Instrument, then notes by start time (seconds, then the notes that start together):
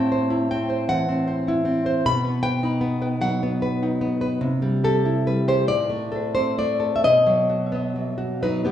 nylon-string guitar
Already playing: A2 C4 A5
0.12 C5
0.30 E4
0.51 C4 G5
0.70 C5
0.89 E3 F#5
1.09 C4
1.28 C5
1.48 E4
1.65 C4
1.86 C5
2.06 B2 B5
2.25 B3
2.43 B4 G5
2.63 D#4
2.81 B3
3.02 B4
3.21 F#3 F#5
3.43 B3
3.62 B4
3.83 D#4
4.01 B3
4.21 B4
4.41 C3
4.62 G3
4.84 G4 A4
5.05 E4
5.27 G3 B4
5.48 G4 C5
5.68 A2 D5
5.89 A3
6.12 A4
6.35 C4 C5
6.58 A3 D5
6.80 A4
6.96 E5
7.04 B2 D#5
7.27 F#3
7.50 F#4
7.72 B3
7.96 F#3
8.18 F#4
8.43 F#3 D#4 B4
8.65 B3 G4